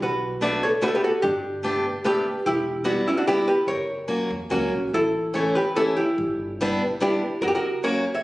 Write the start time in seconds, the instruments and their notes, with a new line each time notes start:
0.00 upright bass B1, hollow-body jazz guitar F#4 B4
0.41 steel-string acoustic guitar A3 B3 D4 F#4, hollow-body jazz guitar B4 D5
0.63 hollow-body jazz guitar A4 C#5
0.82 steel-string acoustic guitar A3 B3 D4 F#4, hollow-body jazz guitar F#4 B4
0.88 hollow-body jazz guitar A4
0.95 hollow-body jazz guitar G4 B4
1.04 hollow-body jazz guitar F#4 A4
1.22 upright bass G1, hollow-body jazz guitar D4 G4
1.63 steel-string acoustic guitar A3 B3 D4 G4
2.04 steel-string acoustic guitar A3 B3 D4 G4, hollow-body jazz guitar G4 B4
2.46 upright bass E1, hollow-body jazz guitar E4 G4
2.84 steel-string acoustic guitar G3 B3 E4 F#4, hollow-body jazz guitar B3 F#4
3.08 hollow-body jazz guitar C#4 E4
3.17 hollow-body jazz guitar D4 F#4
3.27 steel-string acoustic guitar G3 B3 E4 F#4, hollow-body jazz guitar E4 G4
3.48 hollow-body jazz guitar G4 B4
3.67 upright bass F#1, hollow-body jazz guitar A#4 C#5
4.08 steel-string acoustic guitar F#3 A#3 C#4 F#4
4.31 upright bass E2
4.50 upright bass C#2, steel-string acoustic guitar F#3 A#3 C#4 F#4, hollow-body jazz guitar C#4 F#4
4.73 upright bass A#1
4.93 upright bass A1, hollow-body jazz guitar E4 A4
5.34 steel-string acoustic guitar E3 A3 C#4 E4, hollow-body jazz guitar A4 C#5
5.55 hollow-body jazz guitar G4 B4
5.76 steel-string acoustic guitar E3 A3 C#4 E4, hollow-body jazz guitar E4 A4
5.97 hollow-body jazz guitar E4 G4
6.18 upright bass G1
6.61 steel-string acoustic guitar G3 B3 D4 E4
7.00 steel-string acoustic guitar G3 B3 D4 E4, hollow-body jazz guitar E4 G4
7.41 upright bass F#1, hollow-body jazz guitar F#4 A#4
7.48 hollow-body jazz guitar G4
7.55 hollow-body jazz guitar F#4 A#4
7.83 steel-string acoustic guitar F#3 A#3 C#4 F#4, hollow-body jazz guitar A#4 C#5
8.15 hollow-body jazz guitar C#5 E5